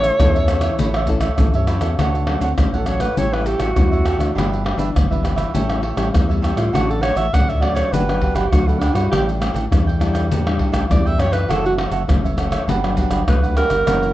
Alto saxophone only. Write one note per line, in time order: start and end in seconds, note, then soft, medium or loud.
0.00 1.33 C#5 loud
2.41 2.59 C4 medium
2.58 2.70 C#4 medium
2.68 2.79 E4 medium
2.77 2.88 A4 medium
2.86 3.02 C#5 loud
3.00 3.20 B4 medium
3.18 3.34 C#5 medium
3.33 3.48 B4 medium
3.47 3.62 G4 medium
3.60 4.50 F#4 medium
6.58 6.76 F4 medium
6.75 6.92 F#4 medium
6.90 7.03 A4 medium
7.02 7.18 C#5 loud
7.17 7.35 E5 medium
7.33 7.50 F#5 medium
7.49 7.62 E5 medium
7.61 7.76 D5 loud
7.75 7.94 C#5 medium
7.92 8.37 B4 medium
8.35 8.53 G4 medium
8.51 8.69 F#4 medium
8.67 8.80 A3 medium
8.79 8.96 D4 medium
8.94 9.10 F#4 medium
9.11 9.29 G4 medium
10.91 11.08 D5 medium
11.06 11.21 E5 loud
11.20 11.34 C#5 medium
11.32 11.52 B4 medium
11.50 11.65 A4 medium
11.66 11.74 F#4 medium
13.28 13.56 B4 medium
13.57 14.13 A#4 loud